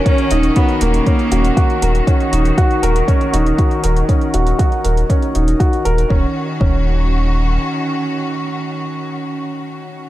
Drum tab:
HH |xxxxxxxxxxxxxxxx|xxxxxxxxxxxxxxxx|xxxxxxxxxxxxxxxx|----------------|
BD |o---o---o---o---|o---o---o---o---|o---o---o---o---|o---o-----------|

HH |----------------|
BD |----------------|